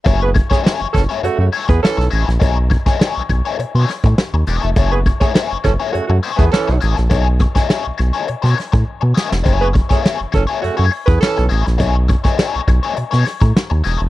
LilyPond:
<<
  \new Staff \with { instrumentName = "Overdriven electric guitar" } { \time 4/4 \key fis \dorian \tempo 4 = 102 <a e' gis' cis''>16 r8 <a e' gis' cis''>16 <a e' gis' cis''>16 r8 <a e' gis' cis''>16 r8 <a e' gis' cis''>16 r8. <a e' gis' dis''>16 r16 | <a dis' gis' cis''>16 r8 <a dis' gis' cis''>16 <a dis' gis' cis''>16 r8 <a dis' gis' cis''>16 r16 <a dis' gis' cis''>16 r4 <a dis' gis' dis''>16 r16 | <a e' gis' cis''>16 r8 <a e' gis' cis''>16 <a e' gis' cis''>16 r8 <a e' gis' cis''>16 r8 <a e' gis' cis''>16 r8. <a e' gis' dis''>16 r16 | <a dis' gis' cis''>16 r8 <a dis' gis' cis''>16 <a dis' gis' cis''>16 r8 <a dis' gis' cis''>16 r16 <a dis' gis' cis''>16 r4 <a dis' gis' dis''>16 r16 |
<a e' gis' cis''>16 r8 <a e' gis' cis''>16 <a e' gis' cis''>16 r8 <a e' gis' cis''>16 r16 <a e' gis' cis''>16 r4 <a e' gis' dis''>16 r16 | <a dis' gis' cis''>16 r8 <a dis' gis' cis''>16 <a dis' gis' cis''>16 r8 <a dis' gis' cis''>16 r16 <a dis' gis' cis''>16 r4 <a dis' gis' dis''>16 r16 | }
  \new Staff \with { instrumentName = "Horn section" } { \time 4/4 \key fis \dorian r16 <b gis' b'>16 r16 <a gis' cis''>16 r8 <e cis' a'>16 r16 <cis a fis'>16 <cis a fis'>16 r16 <b gis' b'>16 <e cis' a'>8 r8 | r1 | r16 <b gis' b'>16 r16 <a gis' cis''>16 r8 <e cis' a'>16 r16 <cis a fis'>16 <cis a fis'>16 r16 <b gis' b'>16 <e cis' a'>8 r8 | r1 |
r16 <b gis' b'>16 r16 <a gis' cis''>16 r8 <e cis' a'>16 r16 <cis a fis'>16 <cis a fis'>16 r16 <b gis' b'>16 <e cis' a'>8 r8 | r1 | }
  \new Staff \with { instrumentName = "Analog synth bass" } { \clef bass \time 4/4 \key fis \dorian fis,,8. r8 fis,,16 fis,,16 r16 fis,16 fis,16 r16 e,16 r16 b,,16 a,,16 ais,,16 | b,,8. r8 b,,16 b,,16 r16 b,16 b,16 r16 a,16 r16 dis,16 e,,16 eis,,16 | fis,,8. r8 fis,,16 fis,,16 r16 fis,16 fis,16 r16 e,16 r16 b,,16 a,,16 ais,,16 | b,,8. r8 b,,16 b,,16 r16 b,16 b,16 r16 a,16 r16 b,16 r16 eis,,16 |
fis,,8. r8 fis,,16 fis,,16 r16 fis,16 fis,16 r16 e,16 r16 b,,16 a,,16 ais,,16 | b,,8. r8 b,,16 b,,16 r16 b,16 b,16 r16 a,16 r16 dis,16 e,,16 eis,,16 | }
  \new DrumStaff \with { instrumentName = "Drums" } \drummode { \time 4/4 <hh bd>16 hh16 <hh bd>16 <hh bd sn>16 sn16 hh16 <hh bd sn>16 hh16 hh8 hho16 <hh bd>16 sn16 <hh sn>16 hh16 <hh sn>16 | <hh bd>8 <hh bd>16 <hh bd sn>16 sn8 <hh bd>16 hh16 hh16 hh16 <hho sn>16 <hh bd>16 sn16 hh16 <hh sn>16 hh16 | <hh bd>16 hh16 <hh bd>16 <hh bd sn>16 sn16 hh16 <hh bd sn>16 hh16 hh8 hho16 <hh bd>16 sn16 sn16 hh16 <hh sn>16 | <hh bd>16 hh16 <hh bd>16 <hh bd sn>16 sn8 <hh sn>16 hh16 hh16 <hh sn>16 <hho sn>16 <hh bd>16 r8 sn16 sn16 |
<hh bd>16 hh16 <hh bd>16 <hh bd sn>16 sn8 <hh bd sn>16 hh16 hh16 hh16 hho16 <hh bd>16 sn16 sn16 hh16 <hh sn>16 | <hh bd>8 <hh bd>16 <hh bd sn>16 sn16 hh16 <hh bd>16 hh16 hh16 <hh sn>16 <hho sn>16 <hh bd>16 sn16 hh16 <hh sn>16 hh16 | }
>>